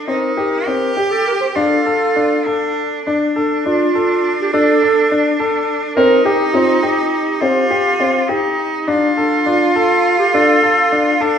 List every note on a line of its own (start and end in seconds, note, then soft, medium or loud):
0.08 0.28 C4 medium
0.08 0.68 D#4 medium
0.08 0.98 A#4 medium
0.37 0.57 G4 medium
0.66 0.87 C4 medium
0.66 1.57 G4 medium
0.96 1.13 G4 medium
0.96 1.37 G4 medium
1.11 1.26 A4 medium
1.27 1.33 A#4 medium
1.41 1.48 C5 medium
1.55 1.76 D4 medium
1.55 2.47 F4 medium
1.55 2.72 A4 medium
1.86 2.06 A4 medium
2.16 2.36 D4 medium
2.46 3.05 D4 medium
2.46 2.87 A4 medium
3.06 5.97 D4 medium
3.06 3.27 D4 medium
3.35 3.63 D4 medium
3.35 3.56 A4 medium
3.66 3.85 D4 medium
3.66 4.35 F4 medium
3.95 4.34 A4 medium
4.41 4.53 G4 medium
4.53 4.73 D4 medium
4.53 5.36 A4 loud
4.82 5.02 A4 medium
5.11 5.30 D4 medium
5.40 5.78 A4 medium
5.96 6.16 C4 medium
5.96 7.42 D#4 medium
5.96 6.23 A#4 loud
6.25 6.55 G4 medium
6.25 6.45 G4 medium
6.53 6.74 C4 medium
6.53 6.85 F4 medium
6.83 7.22 G4 medium
6.83 7.41 G4 medium
7.41 7.61 C4 medium
7.41 8.30 F4 medium
7.41 8.54 G4 medium
7.70 7.90 G4 medium
8.00 8.19 C4 medium
8.28 8.89 D#4 medium
8.28 8.69 G4 medium
8.87 9.07 D4 medium
8.87 11.23 F4 medium
9.16 9.44 D4 medium
9.16 9.37 A4 medium
9.46 9.66 D4 medium
9.46 10.16 F4 medium
9.76 10.15 A4 medium
10.19 10.33 G4 medium
10.34 10.54 D4 medium
10.34 11.17 A4 loud
10.63 10.83 A4 medium
10.92 11.12 D4 medium
11.21 11.38 D4 loud
11.21 11.38 A4 medium